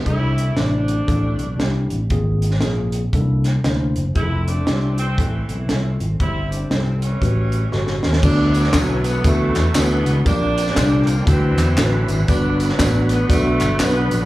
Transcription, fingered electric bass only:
X:1
M:4/4
L:1/8
Q:"Swing" 1/4=118
K:C
V:1 name="Fingered electric bass" clef=bass
C,,2 A,,,2 A,,, B,,, C,, A,,, | _A,,,2 _B,,,2 C,,2 D,, ^F,,, | F,,,2 C,,2 A,,, B,,, C,, _A,,, | G,,,2 C,,2 A,,,2 G,,, _E,, |
[K:D] D,,2 B,,,2 D,, E,, D,, C,, | _B,,,2 =C,,2 D,, E,, A,,, ^G,,, | G,,,2 A,,,2 B,,, G,,, B,,, _B,,, |]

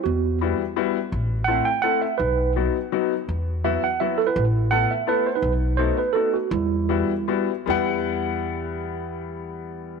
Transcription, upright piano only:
X:1
M:3/4
L:1/8
Q:"Swing" 1/4=166
K:Em
V:1 name="Upright piano"
z2 [G,B,EF] z [G,B,EF] z | z2 [A,CEA] z [A,CEA] z | z2 [F,B,^DF] z [F,B,DF] z | z2 [F,B,EF] z [F,B,EF] z |
z2 [A,B,EA] z [A,B,EA] z | z2 [A,B,^DF] z [A,B,DF] z | z2 [G,B,EF] z [G,B,EF] z | [G,B,Ef]6- |
[G,B,Ef]6 |]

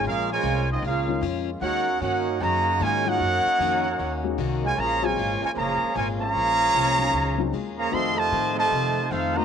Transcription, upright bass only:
X:1
M:4/4
L:1/8
Q:"Swing" 1/4=152
K:Bbm
V:1 name="Upright bass" clef=bass
B,,,2 C,,2 D,,2 F,,2 | E,,2 =G,,2 _G,,2 A,,2 | G,, z F,,2 E,,2 C,,2 | B,,,2 A,,, z G,,, z A,,,2 |
B,,,2 C,,2 D,,2 E,,2 | F,,2 =A,,2 C,2 F,,2 |]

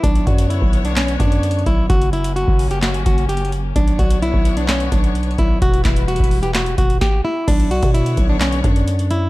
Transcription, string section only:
X:1
M:4/4
L:1/8
Q:1/4=129
K:Bm
V:1 name="String section"
[D,B,c]8 | [F,^A,C]8 | [D,B,c]8 | [E,G,EB]6 z2 |
[D,B,c]8 |]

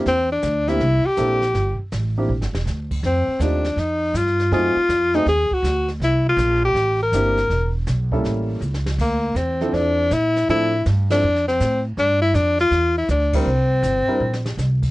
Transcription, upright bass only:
X:1
M:4/4
L:1/8
Q:"Swing" 1/4=161
K:Cmix
V:1 name="Upright bass" clef=bass
E,,2 D,,2 C,, z B,,,2 | G,,, z A,,,2 (3B,,, G,,, E,,, D,,2 | F,, z _E,,2 F,,2 G,,2 | ^F,, z =F,,2 ^D,, z =D,,2 |
C,,2 B,,,2 A,,,2 G,,,2 | E,,,2 =B,,,2 A,,,2 ^C,,2 | D,,2 E,,2 F,,2 B,,2 | A,,2 G,,2 F,,2 A,,2 |
G,,2 F,,2 E,,2 D,,2 | C,,2 G,,, z B,,,2 C,,2 |]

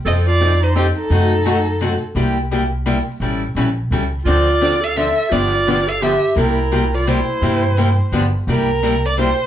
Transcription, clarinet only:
X:1
M:3/4
L:1/8
Q:"Swing" 1/4=171
K:Cmix
V:1 name="Clarinet"
A F2 _E C E- | _E4- E z | z6 | z6 |
F3 A A2 | F3 A G2 | E3 F E2- | E4 z2 |
z6 |]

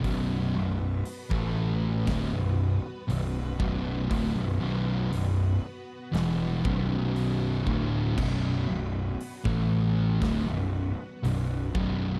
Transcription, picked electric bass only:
X:1
M:4/4
L:1/16
Q:1/4=59
K:Bm
V:1 name="Picked electric bass" clef=bass
B,,,,2 B,,,,2 z A,,,3 D,,, B,,,,2 z B,,,,2 B,,,,2 | D,,, B,,,, B,,,,2 B,,,,2 z2 E,,,2 B,,,,4 D,,,2 | B,,,,2 B,,,,2 z A,,,3 D,,, B,,,,2 z B,,,,2 B,,,,2 |]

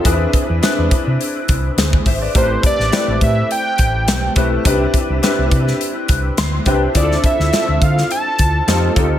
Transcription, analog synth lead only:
X:1
M:4/4
L:1/8
Q:"Swing 16ths" 1/4=104
K:Ddor
V:1 name="Analog synth lead"
z8 | c d2 e g3 z | z8 | d e2 f a3 z |]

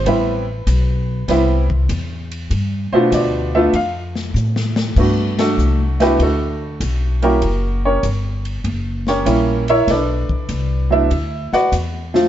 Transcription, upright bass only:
X:1
M:4/4
L:1/8
Q:"Swing" 1/4=98
K:Gmix
V:1 name="Upright bass" clef=bass
A,,,2 B,,,2 C,,2 E,,2 | G,, z D,,2 F,,2 A,,2 | [K:G] G,,2 C,,2 D,,2 B,,,2 | F,,,2 G,,,2 F,,,2 ^A,,,2 |
B,,, z C,,2 D,, z E,,2 |]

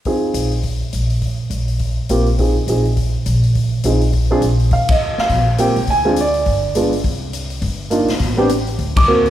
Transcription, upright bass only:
X:1
M:4/4
L:1/8
Q:"Swing" 1/4=206
K:Bbmix
V:1 name="Upright bass" clef=bass
z2 B,,,3 z B,,,2- | B,,, z B,,,3 z B,,,2- | B,,, z B,,,3 z B,,,2- | B,,, z B,,,3 z B,,,2 |
E,,3 z B,,,3 C,, | D,,4 G,,,4 | C,,4 G,,,3 z | =A,,,4 D,,4 |]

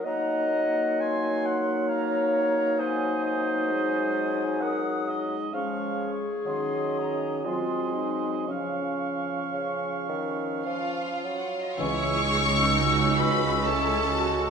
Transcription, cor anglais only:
X:1
M:3/4
L:1/8
Q:1/4=65
K:Db
V:1 name="Cor anglais"
g2 a g f2 | e e3 g e | f z e2 e2 | f4- f z |
[K:C#m] c6 |]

